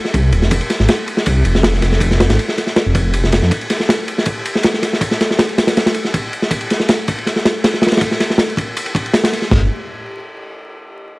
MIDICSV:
0, 0, Header, 1, 3, 480
1, 0, Start_track
1, 0, Tempo, 375000
1, 658, Time_signature, 4, 2, 24, 8
1, 14324, End_track
2, 0, Start_track
2, 0, Title_t, "Detuned saw bass"
2, 0, Program_c, 0, 39
2, 178, Note_on_c, 0, 36, 97
2, 414, Note_on_c, 0, 26, 104
2, 433, Note_off_c, 0, 36, 0
2, 529, Note_off_c, 0, 26, 0
2, 539, Note_on_c, 0, 29, 87
2, 645, Note_off_c, 0, 29, 0
2, 658, Note_on_c, 0, 29, 102
2, 771, Note_off_c, 0, 29, 0
2, 1020, Note_on_c, 0, 32, 99
2, 1125, Note_off_c, 0, 32, 0
2, 1622, Note_on_c, 0, 36, 94
2, 1837, Note_off_c, 0, 36, 0
2, 1854, Note_on_c, 0, 29, 96
2, 2318, Note_off_c, 0, 29, 0
2, 2334, Note_on_c, 0, 29, 95
2, 2921, Note_off_c, 0, 29, 0
2, 2940, Note_on_c, 0, 32, 100
2, 3045, Note_off_c, 0, 32, 0
2, 3665, Note_on_c, 0, 29, 93
2, 3768, Note_off_c, 0, 29, 0
2, 3774, Note_on_c, 0, 29, 93
2, 4362, Note_off_c, 0, 29, 0
2, 4384, Note_on_c, 0, 41, 95
2, 4487, Note_off_c, 0, 41, 0
2, 12179, Note_on_c, 0, 31, 102
2, 12402, Note_off_c, 0, 31, 0
2, 14324, End_track
3, 0, Start_track
3, 0, Title_t, "Drums"
3, 61, Note_on_c, 9, 38, 43
3, 178, Note_on_c, 9, 36, 107
3, 179, Note_on_c, 9, 51, 71
3, 189, Note_off_c, 9, 38, 0
3, 306, Note_off_c, 9, 36, 0
3, 307, Note_off_c, 9, 51, 0
3, 415, Note_on_c, 9, 51, 59
3, 538, Note_on_c, 9, 38, 45
3, 543, Note_off_c, 9, 51, 0
3, 652, Note_on_c, 9, 51, 97
3, 658, Note_on_c, 9, 36, 113
3, 666, Note_off_c, 9, 38, 0
3, 779, Note_off_c, 9, 51, 0
3, 779, Note_on_c, 9, 51, 41
3, 786, Note_off_c, 9, 36, 0
3, 896, Note_off_c, 9, 51, 0
3, 896, Note_on_c, 9, 38, 46
3, 896, Note_on_c, 9, 51, 63
3, 1023, Note_off_c, 9, 38, 0
3, 1023, Note_on_c, 9, 38, 45
3, 1024, Note_off_c, 9, 51, 0
3, 1134, Note_on_c, 9, 51, 102
3, 1139, Note_off_c, 9, 38, 0
3, 1139, Note_on_c, 9, 38, 107
3, 1262, Note_off_c, 9, 51, 0
3, 1267, Note_off_c, 9, 38, 0
3, 1378, Note_on_c, 9, 51, 64
3, 1499, Note_on_c, 9, 38, 53
3, 1506, Note_off_c, 9, 51, 0
3, 1612, Note_on_c, 9, 51, 92
3, 1621, Note_on_c, 9, 36, 106
3, 1627, Note_off_c, 9, 38, 0
3, 1740, Note_off_c, 9, 51, 0
3, 1749, Note_off_c, 9, 36, 0
3, 1854, Note_on_c, 9, 51, 64
3, 1982, Note_off_c, 9, 51, 0
3, 1983, Note_on_c, 9, 38, 50
3, 2089, Note_off_c, 9, 38, 0
3, 2089, Note_on_c, 9, 38, 127
3, 2099, Note_on_c, 9, 51, 87
3, 2217, Note_off_c, 9, 38, 0
3, 2219, Note_on_c, 9, 38, 53
3, 2227, Note_off_c, 9, 51, 0
3, 2330, Note_on_c, 9, 51, 66
3, 2332, Note_off_c, 9, 38, 0
3, 2332, Note_on_c, 9, 38, 50
3, 2454, Note_off_c, 9, 38, 0
3, 2454, Note_on_c, 9, 38, 42
3, 2458, Note_off_c, 9, 51, 0
3, 2566, Note_on_c, 9, 36, 106
3, 2572, Note_on_c, 9, 51, 89
3, 2582, Note_off_c, 9, 38, 0
3, 2694, Note_off_c, 9, 36, 0
3, 2698, Note_on_c, 9, 38, 48
3, 2700, Note_off_c, 9, 51, 0
3, 2817, Note_off_c, 9, 38, 0
3, 2817, Note_on_c, 9, 38, 122
3, 2818, Note_on_c, 9, 51, 77
3, 2939, Note_off_c, 9, 38, 0
3, 2939, Note_on_c, 9, 38, 99
3, 2943, Note_off_c, 9, 51, 0
3, 2943, Note_on_c, 9, 51, 80
3, 3061, Note_off_c, 9, 51, 0
3, 3061, Note_on_c, 9, 51, 64
3, 3067, Note_off_c, 9, 38, 0
3, 3180, Note_on_c, 9, 38, 42
3, 3189, Note_off_c, 9, 51, 0
3, 3300, Note_off_c, 9, 38, 0
3, 3300, Note_on_c, 9, 38, 38
3, 3303, Note_on_c, 9, 51, 58
3, 3414, Note_off_c, 9, 38, 0
3, 3414, Note_on_c, 9, 38, 37
3, 3431, Note_off_c, 9, 51, 0
3, 3537, Note_off_c, 9, 38, 0
3, 3537, Note_on_c, 9, 38, 105
3, 3537, Note_on_c, 9, 51, 73
3, 3665, Note_off_c, 9, 38, 0
3, 3665, Note_off_c, 9, 51, 0
3, 3772, Note_on_c, 9, 51, 79
3, 3775, Note_on_c, 9, 36, 107
3, 3900, Note_off_c, 9, 51, 0
3, 3903, Note_off_c, 9, 36, 0
3, 4013, Note_on_c, 9, 51, 66
3, 4141, Note_off_c, 9, 51, 0
3, 4143, Note_on_c, 9, 38, 46
3, 4252, Note_on_c, 9, 51, 85
3, 4262, Note_off_c, 9, 38, 0
3, 4262, Note_on_c, 9, 38, 95
3, 4380, Note_off_c, 9, 51, 0
3, 4382, Note_off_c, 9, 38, 0
3, 4382, Note_on_c, 9, 38, 51
3, 4495, Note_on_c, 9, 36, 107
3, 4497, Note_on_c, 9, 51, 79
3, 4510, Note_off_c, 9, 38, 0
3, 4623, Note_off_c, 9, 36, 0
3, 4623, Note_off_c, 9, 51, 0
3, 4623, Note_on_c, 9, 51, 45
3, 4734, Note_off_c, 9, 51, 0
3, 4734, Note_on_c, 9, 51, 76
3, 4737, Note_on_c, 9, 38, 45
3, 4862, Note_off_c, 9, 38, 0
3, 4862, Note_off_c, 9, 51, 0
3, 4862, Note_on_c, 9, 38, 42
3, 4977, Note_off_c, 9, 38, 0
3, 4977, Note_on_c, 9, 38, 117
3, 4990, Note_on_c, 9, 51, 90
3, 5105, Note_off_c, 9, 38, 0
3, 5118, Note_off_c, 9, 51, 0
3, 5221, Note_on_c, 9, 51, 78
3, 5349, Note_off_c, 9, 51, 0
3, 5354, Note_on_c, 9, 38, 50
3, 5449, Note_on_c, 9, 51, 86
3, 5458, Note_on_c, 9, 36, 101
3, 5482, Note_off_c, 9, 38, 0
3, 5577, Note_off_c, 9, 51, 0
3, 5586, Note_off_c, 9, 36, 0
3, 5703, Note_on_c, 9, 51, 71
3, 5829, Note_on_c, 9, 38, 46
3, 5831, Note_off_c, 9, 51, 0
3, 5930, Note_on_c, 9, 51, 89
3, 5945, Note_off_c, 9, 38, 0
3, 5945, Note_on_c, 9, 38, 109
3, 6058, Note_off_c, 9, 51, 0
3, 6061, Note_off_c, 9, 38, 0
3, 6061, Note_on_c, 9, 38, 52
3, 6176, Note_off_c, 9, 38, 0
3, 6176, Note_on_c, 9, 38, 53
3, 6180, Note_on_c, 9, 51, 74
3, 6304, Note_off_c, 9, 38, 0
3, 6308, Note_off_c, 9, 51, 0
3, 6312, Note_on_c, 9, 38, 47
3, 6413, Note_on_c, 9, 36, 109
3, 6416, Note_on_c, 9, 51, 93
3, 6440, Note_off_c, 9, 38, 0
3, 6541, Note_off_c, 9, 36, 0
3, 6542, Note_on_c, 9, 38, 50
3, 6544, Note_off_c, 9, 51, 0
3, 6663, Note_on_c, 9, 51, 76
3, 6664, Note_off_c, 9, 38, 0
3, 6664, Note_on_c, 9, 38, 58
3, 6789, Note_off_c, 9, 38, 0
3, 6789, Note_on_c, 9, 38, 49
3, 6791, Note_off_c, 9, 51, 0
3, 6895, Note_off_c, 9, 38, 0
3, 6895, Note_on_c, 9, 38, 120
3, 6898, Note_on_c, 9, 51, 92
3, 7023, Note_off_c, 9, 38, 0
3, 7026, Note_off_c, 9, 51, 0
3, 7027, Note_on_c, 9, 51, 40
3, 7142, Note_on_c, 9, 38, 100
3, 7144, Note_off_c, 9, 51, 0
3, 7144, Note_on_c, 9, 51, 84
3, 7261, Note_off_c, 9, 38, 0
3, 7261, Note_on_c, 9, 38, 99
3, 7267, Note_off_c, 9, 51, 0
3, 7267, Note_on_c, 9, 51, 83
3, 7383, Note_off_c, 9, 51, 0
3, 7383, Note_on_c, 9, 51, 81
3, 7387, Note_off_c, 9, 38, 0
3, 7387, Note_on_c, 9, 38, 98
3, 7504, Note_off_c, 9, 38, 0
3, 7504, Note_on_c, 9, 38, 104
3, 7511, Note_off_c, 9, 51, 0
3, 7511, Note_on_c, 9, 51, 76
3, 7609, Note_off_c, 9, 51, 0
3, 7609, Note_on_c, 9, 51, 70
3, 7632, Note_off_c, 9, 38, 0
3, 7737, Note_off_c, 9, 51, 0
3, 7739, Note_on_c, 9, 38, 43
3, 7858, Note_on_c, 9, 51, 82
3, 7860, Note_on_c, 9, 36, 100
3, 7867, Note_off_c, 9, 38, 0
3, 7986, Note_off_c, 9, 51, 0
3, 7988, Note_off_c, 9, 36, 0
3, 8102, Note_on_c, 9, 51, 56
3, 8222, Note_on_c, 9, 38, 45
3, 8230, Note_off_c, 9, 51, 0
3, 8330, Note_on_c, 9, 36, 100
3, 8333, Note_on_c, 9, 51, 90
3, 8350, Note_off_c, 9, 38, 0
3, 8458, Note_off_c, 9, 36, 0
3, 8458, Note_off_c, 9, 51, 0
3, 8458, Note_on_c, 9, 51, 49
3, 8579, Note_off_c, 9, 51, 0
3, 8579, Note_on_c, 9, 51, 67
3, 8588, Note_on_c, 9, 38, 47
3, 8700, Note_off_c, 9, 38, 0
3, 8700, Note_on_c, 9, 38, 44
3, 8707, Note_off_c, 9, 51, 0
3, 8814, Note_on_c, 9, 51, 86
3, 8819, Note_off_c, 9, 38, 0
3, 8819, Note_on_c, 9, 38, 122
3, 8942, Note_off_c, 9, 51, 0
3, 8947, Note_off_c, 9, 38, 0
3, 9059, Note_on_c, 9, 51, 80
3, 9064, Note_on_c, 9, 36, 97
3, 9187, Note_off_c, 9, 51, 0
3, 9192, Note_off_c, 9, 36, 0
3, 9195, Note_on_c, 9, 51, 40
3, 9297, Note_on_c, 9, 38, 38
3, 9306, Note_off_c, 9, 51, 0
3, 9306, Note_on_c, 9, 51, 57
3, 9420, Note_off_c, 9, 38, 0
3, 9420, Note_on_c, 9, 38, 40
3, 9434, Note_off_c, 9, 51, 0
3, 9540, Note_off_c, 9, 38, 0
3, 9540, Note_on_c, 9, 38, 104
3, 9542, Note_on_c, 9, 51, 80
3, 9668, Note_off_c, 9, 38, 0
3, 9670, Note_off_c, 9, 51, 0
3, 9780, Note_on_c, 9, 38, 114
3, 9781, Note_on_c, 9, 51, 98
3, 9904, Note_off_c, 9, 38, 0
3, 9904, Note_on_c, 9, 38, 50
3, 9909, Note_off_c, 9, 51, 0
3, 10007, Note_off_c, 9, 38, 0
3, 10007, Note_on_c, 9, 38, 97
3, 10020, Note_on_c, 9, 51, 70
3, 10069, Note_off_c, 9, 38, 0
3, 10069, Note_on_c, 9, 38, 91
3, 10090, Note_off_c, 9, 51, 0
3, 10090, Note_on_c, 9, 51, 65
3, 10136, Note_off_c, 9, 51, 0
3, 10136, Note_on_c, 9, 51, 73
3, 10138, Note_off_c, 9, 38, 0
3, 10138, Note_on_c, 9, 38, 83
3, 10204, Note_off_c, 9, 38, 0
3, 10204, Note_on_c, 9, 38, 90
3, 10207, Note_off_c, 9, 51, 0
3, 10207, Note_on_c, 9, 51, 59
3, 10253, Note_off_c, 9, 51, 0
3, 10253, Note_on_c, 9, 51, 92
3, 10258, Note_on_c, 9, 36, 117
3, 10332, Note_off_c, 9, 38, 0
3, 10381, Note_off_c, 9, 51, 0
3, 10385, Note_on_c, 9, 38, 52
3, 10386, Note_off_c, 9, 36, 0
3, 10500, Note_off_c, 9, 38, 0
3, 10500, Note_on_c, 9, 38, 58
3, 10501, Note_on_c, 9, 51, 70
3, 10626, Note_off_c, 9, 38, 0
3, 10626, Note_on_c, 9, 38, 50
3, 10629, Note_off_c, 9, 51, 0
3, 10726, Note_off_c, 9, 38, 0
3, 10726, Note_on_c, 9, 38, 126
3, 10746, Note_on_c, 9, 51, 89
3, 10854, Note_off_c, 9, 38, 0
3, 10874, Note_off_c, 9, 51, 0
3, 10875, Note_on_c, 9, 51, 47
3, 10973, Note_on_c, 9, 36, 101
3, 10985, Note_off_c, 9, 51, 0
3, 10985, Note_on_c, 9, 51, 67
3, 11101, Note_off_c, 9, 36, 0
3, 11113, Note_off_c, 9, 51, 0
3, 11220, Note_on_c, 9, 51, 90
3, 11340, Note_off_c, 9, 51, 0
3, 11340, Note_on_c, 9, 51, 42
3, 11453, Note_on_c, 9, 36, 103
3, 11466, Note_off_c, 9, 51, 0
3, 11466, Note_on_c, 9, 51, 70
3, 11581, Note_off_c, 9, 36, 0
3, 11594, Note_off_c, 9, 51, 0
3, 11594, Note_on_c, 9, 51, 41
3, 11693, Note_on_c, 9, 38, 106
3, 11697, Note_off_c, 9, 51, 0
3, 11697, Note_on_c, 9, 51, 90
3, 11821, Note_off_c, 9, 38, 0
3, 11822, Note_on_c, 9, 38, 101
3, 11825, Note_off_c, 9, 51, 0
3, 11834, Note_on_c, 9, 51, 89
3, 11937, Note_off_c, 9, 38, 0
3, 11937, Note_on_c, 9, 38, 37
3, 11947, Note_off_c, 9, 51, 0
3, 11947, Note_on_c, 9, 51, 63
3, 12054, Note_off_c, 9, 38, 0
3, 12054, Note_on_c, 9, 38, 37
3, 12075, Note_off_c, 9, 51, 0
3, 12178, Note_off_c, 9, 38, 0
3, 12178, Note_on_c, 9, 38, 105
3, 12178, Note_on_c, 9, 49, 85
3, 12179, Note_on_c, 9, 36, 99
3, 12306, Note_off_c, 9, 38, 0
3, 12306, Note_off_c, 9, 49, 0
3, 12307, Note_off_c, 9, 36, 0
3, 14324, End_track
0, 0, End_of_file